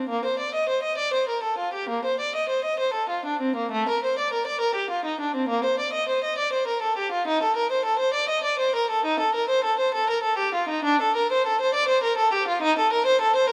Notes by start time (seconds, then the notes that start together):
0.09 A#3
0.25 C5
0.39 D5
0.54 D#5
0.69 C5
0.83 D#5
0.98 D5
1.14 C5
1.29 A#4
1.43 A4
1.58 F4
1.74 G4
1.89 A#3
2.05 C5
2.20 D5
2.36 D#5
2.49 C5
2.65 D#5
2.79 C5
2.94 A4
3.09 F4
3.25 D4
3.41 C4
3.56 A#3
3.72 A3
3.89 A#4
4.04 C5
4.19 D5
4.33 A#4
4.47 D5
4.61 A#4
4.75 G4
4.90 F4
5.05 D#4
5.20 D4
5.35 C4
5.49 A#3
5.64 C5
5.79 D5
5.93 D#5
6.09 C5
6.24 D#5
6.38 D5
6.53 C5
6.67 A#4
6.82 A4
6.97 G4
7.12 F4
7.28 D#4
7.43 A4
7.56 A#4
7.72 C5
7.85 A4
7.99 C5
8.14 D5
8.29 D#5
8.44 D5
8.59 C5
8.75 A#4
8.90 A4
9.05 D#4
9.20 A4
9.35 A#4
9.49 C5
9.64 A4
9.79 C5
9.94 A4
10.10 A#4
10.23 A4
10.37 G4
10.55 F4
10.69 D#4
10.84 D4
11.01 A4
11.16 A#4
11.32 C5
11.47 A4
11.61 C5
11.74 D5
11.88 C5
12.04 A#4
12.17 A4
12.33 G4
12.48 F4
12.62 D#4
12.79 A4
12.93 A#4
13.06 C5
13.21 A4
13.36 C5